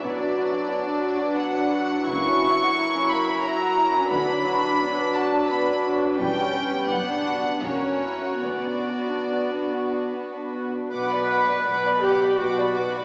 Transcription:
<<
  \new Staff \with { instrumentName = "Violin section" } { \time 3/4 \key b \minor \tempo 4 = 85 d''2 fis''4 | cis'''4. b''8 ais''4 | b''4. a''8 b''8 r8 | g''4 fis''4 cis''4 |
d''2 r4 | d'''16 b''16 d'''16 b''16 d'''16 b''16 d'''16 b''16 d'''16 b''16 d'''16 b''16 | }
  \new Staff \with { instrumentName = "Viola section" } { \time 3/4 \key b \minor << { d'2. | e'2. | d'2. | cis'4 d'4 fis'4~ |
fis'2~ fis'8 r8 | b'4. g'8 fis'4 | } \\ { fis2. | fis2.~ | fis2. | g4 b4 cis'4 |
b2~ b8 r8 | r2. | } >> }
  \new Staff \with { instrumentName = "Violin section" } { \time 3/4 \key b \minor << { b'2.~ | b'4 ais'2 | b'2.~ | b'2 ais'4 |
b'2~ b'8 r8 | <b' fis''>16 d''16 <b' fis''>16 d''16 <b' fis''>16 d''16 <b' fis''>16 d''16 <b' fis''>16 d''16 <b' fis''>16 d''16 | } \\ { b16 d'16 fis'16 d'16 b16 d'16 fis'16 d'16 b16 d'16 fis'16 d'16 | ais16 cis'16 e'16 fis'16 e'16 cis'16 ais16 cis'16 e'16 fis'16 e'16 cis'16 | b16 d'16 fis'16 d'16 b16 d'16 fis'16 d'16 b16 d'16 fis'16 d'16 | g16 b16 cis'16 b16 b16 d'16 fis'16 d'16 ais16 cis'16 e'16 fis'16 |
b16 d'16 fis'16 d'16 b16 d'16 fis'16 d'16 b16 d'16 fis'16 d'16 | r2. | } >> }
  \new Staff \with { instrumentName = "Cello section" } { \clef bass \time 3/4 \key b \minor b,4 r2 | cis4 r2 | d4 r2 | e,4 fis,4 e,4 |
d,4 r2 | b,4 b,4 b,4 | }
  \new Staff \with { instrumentName = "Double bass section" } { \clef bass \time 3/4 \key b \minor b,,4 r2 | cis,4 r2 | d,4 r2 | e,,4 fis,,4 e,,4 |
d,4 r2 | b,,4 b,,4 b,,4 | }
>>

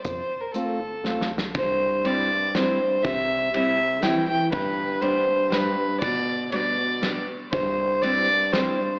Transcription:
<<
  \new Staff \with { instrumentName = "Fiddle" } { \time 3/4 \key f \major \tempo 4 = 120 c''8. bes'16 a'4. r8 | \key c \major c''4 d''4 c''4 | e''4 e''4 g''8 g''8 | b'4 c''4 b'4 |
d''4 d''4. r8 | c''4 d''4 c''4 | }
  \new Staff \with { instrumentName = "Steel-string acoustic guitar" } { \time 3/4 \key f \major r4 <a c' f'>8 r8 <a c' f'>8 r8 | \key c \major r4 <g c' e'>8 r8 <g c' e'>8 r8 | r4 <g c' e'>8 r8 <g c' e'>8 r8 | r4 <g b d'>8 r8 <g b d'>8 r8 |
r4 <g b d'>8 r8 <g b d'>8 r8 | r4 <g c' e'>8 r8 <g c' e'>8 r8 | }
  \new Staff \with { instrumentName = "Euphonium" } { \clef bass \time 3/4 \key f \major r2. | \key c \major g,4 g,4 g,4 | c4 c4 e8 e8 | g,4 g,4 g,4 |
b,4 b,4. r8 | g,4 g,4 g,4 | }
  \new Staff \with { instrumentName = "FM bass" } { \clef bass \time 3/4 \key f \major f,8 r4 g,,8 a,,8 c,8 | \key c \major c,2. | c,2. | g,,2. |
g,,2. | c,2. | }
  \new DrumStaff \with { instrumentName = "Drums" } \drummode { \time 3/4 <hh bd>4 hh4 \tuplet 3/2 { sn8 sn8 sn8 } | <bd cymr>4 cymr4 <cymr sn>4 | <bd cymr>4 cymr4 <cymr sn>4 | <bd cymr>4 cymr4 <cymr sn>4 |
<bd cymr>4 cymr4 <cymr sn>4 | <bd cymr>4 cymr4 <cymr sn>4 | }
>>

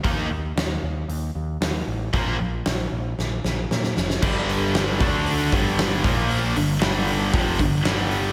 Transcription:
<<
  \new Staff \with { instrumentName = "Distorted electric guitar" } { \clef bass \time 4/4 \key g \minor \tempo 4 = 115 <ees bes ees'>8 r2. r8 | <bes, f bes>8 r2. r8 | <g, d g>4. <d a d'>4 <g, d g>4 <bes, f bes>8~ | <bes, f bes>8 <g, d>8 <g, d g>4 <f, c f>8 <g, d>8 <g, d g>4 | }
  \new Staff \with { instrumentName = "Distorted electric guitar" } { \clef bass \time 4/4 \key g \minor <ees bes ees'>8 r2. r8 | <bes, f bes>8 r2. r8 | <g, d g>4. <d a d'>4 <g, d g>4 <bes, f bes>8~ | <bes, f bes>8 <g, d>8 <g, d g>4 <f, c f>8 <g, d>8 <g, d g>4 | }
  \new Staff \with { instrumentName = "Distorted electric guitar" } { \clef bass \time 4/4 \key g \minor r1 | r1 | <g, d g>4. <d a d'>4 <g, d g>4 <bes, f bes>8~ | <bes, f bes>8 <g, d>8 <g, d g>4 <f, c f>8 <g, d>8 <g, d g>4 | }
  \new Staff \with { instrumentName = "Picked electric bass" } { \clef bass \time 4/4 \key g \minor ees,8 ees,8 ees,8 ees,8 ees,8 ees,8 ees,8 a,,8 | bes,,8 bes,,8 bes,,8 bes,,8 bes,,8 bes,,8 bes,8 f,,8 | g,,4. d,4 g,,4 bes,,8~ | bes,,8 g,,8 g,,4 f,,8 g,,8 g,,4 | }
  \new DrumStaff \with { instrumentName = "Drums" } \drummode { \time 4/4 <hho bd>4 <hho sn>4 hho4 <hho sn>4 | <hho bd>4 <hho sn>4 sn8 sn8 sn16 sn16 sn16 sn16 | <cymc bd>8 hho8 <hho sn>8 <hho bd>8 hho8 <hho bd>8 <hho sn>8 <hho bd>8 | hho8 hho8 <hho sn>8 hho8 <hho bd>8 <hho bd>8 <hho sn>8 hho8 | }
>>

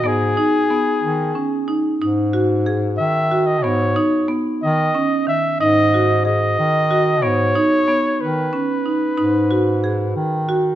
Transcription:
<<
  \new Staff \with { instrumentName = "Flugelhorn" } { \time 11/8 \key gis \minor \tempo 4 = 92 gis'2. r4. e''8. dis''16 | cis''4 r8 dis''4 e''8 dis''4 dis''4. | cis''4. b'2.~ b'8 r8 | }
  \new Staff \with { instrumentName = "Marimba" } { \time 11/8 \key gis \minor b8 dis'8 b4 cis'8 dis'8 dis'8 fis'8 gis'4 fis'8 | b8 dis'8 b4 cis'8 dis8 dis'8 fis'8 gis'4 fis'8 | b8 dis'8 b4 cis'8 dis'8 dis'8 fis'8 gis'4 fis'8 | }
  \new Staff \with { instrumentName = "Bass clarinet" } { \clef bass \time 11/8 \key gis \minor gis,8 r4 dis8 r4 gis,4. dis4 | gis,8 r4 dis8 r4 gis,4. dis4 | gis,8 r4 dis8 r4 gis,4. dis4 | }
>>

